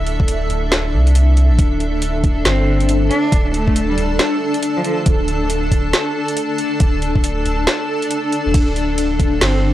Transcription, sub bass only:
0.00 0.49 D1 loud
0.50 0.95 D1 medium
0.93 1.52 C2 loud
1.50 1.58 A1 loud
1.59 2.23 D1 loud
2.24 2.44 D1 loud
2.45 3.10 G1 medium
3.32 3.97 D1 loud
3.97 4.18 D1 loud
5.06 5.70 D1 loud
5.71 5.92 D1 medium
6.80 7.44 D1 loud
7.46 7.66 D1 loud
8.46 8.54 E1 medium
8.54 9.18 D1 loud
9.19 9.40 D1 loud
9.41 9.73 G1 medium

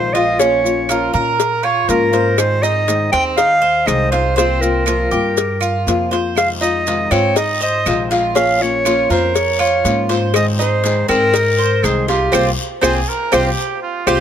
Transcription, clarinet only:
0.00 0.15 C5 loud
0.14 0.41 D#5 medium
0.40 1.14 C#5 medium
1.89 2.40 A#4 medium
2.39 2.64 C5 loud
2.63 3.12 D#5 loud
3.12 3.24 G5 loud
3.37 3.88 F5 loud
3.87 4.11 D#5 loud
4.12 4.35 C5 medium
4.37 4.63 C5 loud
4.61 6.11 A#4 medium
6.38 6.49 F5 loud
6.62 7.13 D#5 medium
7.12 7.36 C#5 medium
7.38 7.60 D#5 medium
7.63 8.08 D#5 medium
8.36 8.63 F5 loud
8.62 9.11 C#5 loud
9.11 9.37 C5 medium
9.35 9.60 C#5 medium
9.60 10.06 C#5 medium
10.35 10.46 D#5 loud
10.60 11.06 C5 medium
11.09 11.85 A#4 loud
11.83 12.08 G#4 medium
12.08 12.32 G4 medium
12.34 12.46 C5 loud
12.83 12.95 C5 loud
13.33 13.45 C5 loud
14.07 14.19 C5 loud

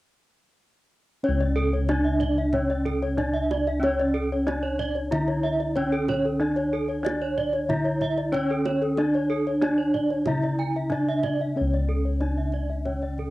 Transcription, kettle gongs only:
1.23 3.13 C#4 soft
1.29 5.09 C#2 medium
1.89 1.97 D4 soft
3.17 3.25 D4 soft
3.83 5.72 C#4 medium
4.47 4.55 D4 soft
5.12 7.01 D3 medium
5.77 5.85 D4 soft
6.41 7.04 D4 medium
7.05 7.13 D4 soft
7.69 9.58 D3 soft
8.34 8.42 D4 soft
8.98 9.61 D4 medium
9.62 9.70 D4 soft
10.27 12.17 C#3 medium
10.92 11.00 D4 soft
11.56 13.30 C#4 medium
11.61 13.30 C#2 medium
12.21 12.29 D4 soft

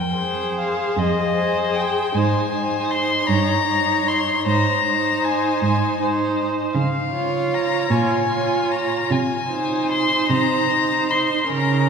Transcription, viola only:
0.18 1.34 G#4 soft
1.35 2.11 G#4 soft
2.15 2.52 D#4 soft
2.53 3.27 D#4 soft
3.31 3.68 D#4 soft
3.69 4.46 D#4 soft
4.48 4.85 D#4 soft
4.87 5.99 D#4 soft
6.02 6.74 D#4 soft
7.13 7.89 F4 soft
7.91 8.29 F4 soft
8.30 9.10 F4 soft
9.52 10.68 D#4 soft
10.71 11.49 D#4 soft
11.51 11.89 C#4 soft

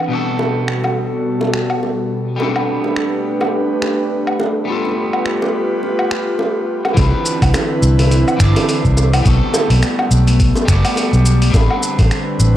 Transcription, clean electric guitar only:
0.08 2.35 B2 medium
0.08 2.35 G3 medium
0.08 2.37 B3 medium
0.13 2.38 F#4 medium
0.13 2.39 A4 medium
2.36 4.63 G3 medium
2.36 4.64 B3 medium
2.36 4.65 C4 medium
2.41 4.66 D4 medium
2.41 4.67 A4 medium
4.65 6.92 G3 medium
4.65 6.93 B3 medium
4.70 6.94 F4 medium
4.70 6.96 A4 medium
6.94 8.35 E3 medium
6.94 8.37 C4 medium
6.99 8.38 D4 medium
6.99 8.39 B4 medium
8.37 9.21 E3 loud
8.37 9.22 C4 medium
8.41 9.22 D4 medium
8.41 9.24 D5 loud
9.22 10.64 G3 medium
9.22 10.65 B3 medium
9.27 10.66 F#4 medium
9.27 10.68 A4 loud
10.65 11.49 G3 loud
10.65 11.51 B3 medium
10.70 11.52 F#4 medium
10.70 11.53 D5 loud
11.50 12.57 G3 medium
11.50 12.57 C4 medium
11.55 12.57 D4 medium
11.55 12.57 B4 loud

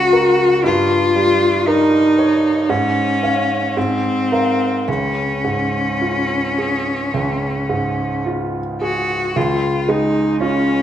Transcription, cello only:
0.00 0.61 F#4 medium
0.64 1.69 F4 medium
1.67 2.71 D#4 medium
2.70 3.79 C#4 medium
3.77 4.89 C4 medium
4.88 8.26 C#4 medium
8.81 9.38 F#4 medium
9.36 9.91 F4 soft
9.89 10.40 D#4 medium
10.41 10.82 C#4 medium

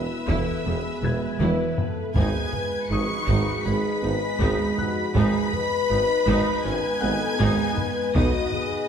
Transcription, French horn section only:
0.00 0.29 E4 medium
0.30 0.66 A4 medium
0.66 1.41 G#4 medium
1.42 1.78 B4 medium
1.80 2.17 A4 medium
2.15 2.52 G#4 medium
2.53 2.90 B4 medium
2.92 3.28 G#4 medium
3.28 3.65 F#4 medium
3.66 4.03 G#4 medium
4.04 4.41 B4 medium
4.42 4.79 G#4 medium
4.80 5.16 F#4 medium
5.16 5.52 G#4 loud
5.53 6.64 B4 loud
6.65 7.02 B4 loud
7.02 7.40 A4 loud
7.40 7.77 G#4 loud
7.78 8.16 B4 loud
8.15 8.53 F#4 loud
8.53 8.88 G#4 loud

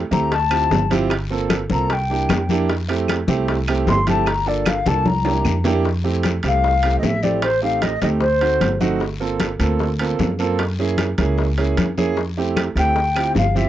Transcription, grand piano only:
0.11 0.31 A3 medium
0.11 0.31 C4 medium
0.11 0.31 E4 medium
0.11 0.32 G4 medium
0.50 0.79 C4 medium
0.50 0.79 E4 medium
0.50 0.79 F4 medium
0.50 0.79 G4 medium
0.90 1.11 C4 loud
0.90 1.11 E4 loud
0.90 1.11 F4 medium
0.90 1.11 G4 loud
1.30 1.58 A#3 medium
1.30 1.58 C4 medium
1.30 1.58 F4 medium
1.30 1.59 A4 loud
1.70 1.90 A#3 medium
1.70 1.90 C4 medium
1.70 1.91 F4 medium
1.70 1.91 A4 medium
2.10 2.38 A#3 medium
2.10 2.38 D4 medium
2.10 2.38 E4 medium
2.10 2.38 G4 medium
2.50 2.69 A#3 loud
2.50 2.70 D4 loud
2.50 2.70 E4 medium
2.50 2.70 G4 loud
2.88 3.16 A3 medium
2.88 3.17 C4 medium
2.88 3.17 E4 medium
2.88 3.17 G4 medium
3.28 3.56 A3 medium
3.28 3.56 C4 medium
3.28 3.56 E4 medium
3.28 3.56 G4 loud
3.68 3.96 A3 medium
3.68 3.96 C4 medium
3.68 3.96 E4 medium
3.68 3.96 G4 loud
4.07 4.27 A3 medium
4.07 4.27 C4 medium
4.07 4.27 E4 medium
4.07 4.27 G4 loud
4.46 4.74 A#3 medium
4.46 4.74 D4 medium
4.46 4.74 F4 medium
4.46 4.75 A4 medium
4.86 5.06 A#3 medium
4.86 5.06 D4 medium
4.86 5.06 F4 medium
4.86 5.06 A4 medium
5.25 5.53 A#3 medium
5.25 5.53 D4 medium
5.25 5.53 E4 medium
5.25 5.53 G4 medium
5.65 5.85 A#3 loud
5.65 5.85 D4 loud
5.65 5.85 E4 loud
5.65 5.85 G4 loud
6.04 6.32 A3 medium
6.04 6.32 C4 medium
6.04 6.32 E4 medium
6.04 6.32 G4 medium
6.44 6.72 A3 medium
6.44 6.72 C4 medium
6.44 6.72 E4 medium
6.44 6.72 G4 medium
6.83 7.11 A3 medium
6.83 7.11 C4 medium
6.83 7.11 E4 medium
6.83 7.12 G4 medium
7.23 7.43 A3 medium
7.23 7.43 C4 medium
7.23 7.43 E4 medium
7.23 7.43 G4 medium
7.62 7.90 A3 medium
7.62 7.90 C4 medium
7.62 7.90 D#4 medium
7.62 7.90 G4 medium
8.02 8.22 A3 medium
8.02 8.22 C4 medium
8.02 8.22 D#4 medium
8.02 8.22 G4 medium
8.41 8.69 A3 medium
8.41 8.69 C4 medium
8.41 8.69 D#4 medium
8.41 8.69 F#4 medium
8.81 9.01 A3 loud
8.81 9.01 C4 medium
8.81 9.01 D#4 medium
8.81 9.01 F#4 loud
9.20 9.48 A#3 medium
9.20 9.48 C4 medium
9.20 9.48 F4 medium
9.20 9.48 A4 medium
9.59 9.87 A#3 medium
9.59 9.88 C4 medium
9.59 9.88 F4 medium
9.59 9.88 A4 medium
10.00 10.28 A#3 medium
10.00 10.28 C4 medium
10.00 10.28 F4 medium
10.00 10.28 A4 medium
10.39 10.59 A#3 loud
10.39 10.59 C4 medium
10.39 10.59 F4 medium
10.39 10.59 A4 loud
10.79 11.07 A#3 medium
10.79 11.07 C#4 medium
10.79 11.07 E4 medium
10.79 11.07 G#4 medium
11.18 11.46 A#3 medium
11.18 11.46 C#4 medium
11.18 11.46 E4 medium
11.18 11.46 G#4 medium
11.58 11.85 A#3 medium
11.58 11.86 C#4 medium
11.58 11.86 E4 medium
11.58 11.86 G#4 medium
11.98 12.17 A#3 loud
11.98 12.17 C#4 medium
11.98 12.17 E4 medium
11.98 12.17 G#4 loud
12.37 12.65 A3 medium
12.37 12.65 C4 medium
12.37 12.65 E4 medium
12.37 12.65 G4 medium
12.76 12.96 A3 medium
12.76 12.96 C4 medium
12.76 12.96 E4 medium
12.76 12.96 G4 medium
13.16 13.43 C4 medium
13.16 13.44 E4 medium
13.16 13.44 F4 medium
13.16 13.44 G4 medium
13.55 13.69 C4 medium
13.55 13.69 E4 medium
13.55 13.69 F4 medium
13.55 13.69 G4 medium

